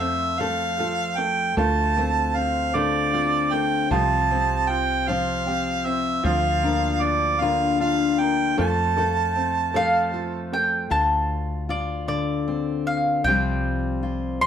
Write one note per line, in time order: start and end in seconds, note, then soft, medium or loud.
0.00 1.52 F2 medium
0.00 1.53 F2 medium
0.00 0.38 A3 medium
0.00 1.65 C4 medium
0.00 0.77 F4 medium
0.00 0.40 A4 medium
0.00 0.41 E5 medium
0.39 2.74 F3 medium
0.39 1.17 A3 medium
0.39 0.79 A4 medium
0.39 1.19 F5 loud
0.79 1.56 F4 medium
0.79 1.53 A4 medium
1.17 1.56 A3 soft
1.17 1.57 G5 medium
1.57 3.87 D2 medium
1.57 3.91 D2 medium
1.57 1.95 A3 medium
1.57 3.12 F4 medium
1.57 2.75 F4 medium
1.57 2.38 A5 medium
1.97 2.73 A3 medium
1.97 3.13 C4 medium
2.35 3.99 C4 soft
2.35 2.77 F5 medium
2.74 3.91 D3 medium
2.74 3.51 A3 medium
2.74 3.91 F4 medium
2.74 3.55 D5 medium
3.13 3.87 C4 medium
3.13 3.91 F4 medium
3.53 3.99 A3 medium
3.53 3.91 G5 medium
3.91 6.21 C2 medium
3.91 5.08 C3 medium
3.91 6.22 F3 medium
3.91 5.09 F4 medium
3.91 5.45 G4 medium
3.91 4.70 A5 medium
4.31 5.07 C4 medium
4.31 5.47 C4 medium
4.69 6.23 F4 medium
4.69 5.09 G5 loud
5.07 7.41 F3 medium
5.07 5.84 C4 medium
5.07 6.25 F4 medium
5.07 5.87 F5 medium
5.47 6.21 C4 soft
5.47 6.25 G4 medium
5.85 6.32 C4 medium
5.85 6.24 E5 medium
6.23 8.54 D2 medium
6.23 8.57 D2 medium
6.23 8.58 F3 medium
6.23 7.79 F4 medium
6.23 7.42 F4 medium
6.23 7.04 F5 medium
6.63 7.40 A#3 medium
6.63 7.79 D4 medium
7.02 8.66 D4 medium
7.02 7.42 D5 medium
7.41 8.58 D3 medium
7.41 8.18 A#3 medium
7.41 8.58 F4 medium
7.41 7.80 F5 medium
7.80 8.54 D4 medium
7.80 8.57 F4 medium
7.80 8.20 F5 medium
8.19 8.58 A#3 medium
8.19 8.57 G5 medium
8.57 10.86 F2 medium
8.57 10.88 F2 medium
8.57 8.95 A3 medium
8.57 10.11 F4 medium
8.57 8.97 A4 medium
8.57 10.49 A5 medium
8.97 9.73 A3 medium
8.97 9.74 A4 medium
9.36 10.99 C4 medium
9.74 10.87 F3 medium
9.74 10.51 A3 medium
9.74 10.13 A4 medium
9.74 10.53 F5 medium
10.13 10.99 F4 medium
10.13 10.87 A4 medium
10.52 10.99 A3 soft
10.52 10.91 G5 medium
10.90 13.24 D2 medium
10.90 13.20 D2 medium
10.90 11.69 F4 medium
10.90 11.71 A5 medium
11.69 13.28 F4 medium
11.69 12.07 D5 medium
12.08 13.24 D3 medium
12.08 12.88 D5 medium
12.48 13.20 C4 soft
12.87 13.24 F5 medium
13.24 14.47 C2 medium
13.24 14.41 C3 medium
13.24 14.41 F3 medium
13.24 14.47 G3 medium
13.24 14.47 C4 medium
13.24 14.37 G5 medium
13.29 14.02 F4 medium
14.03 14.47 F4 medium
14.41 14.47 F3 medium
14.41 14.47 C6 loud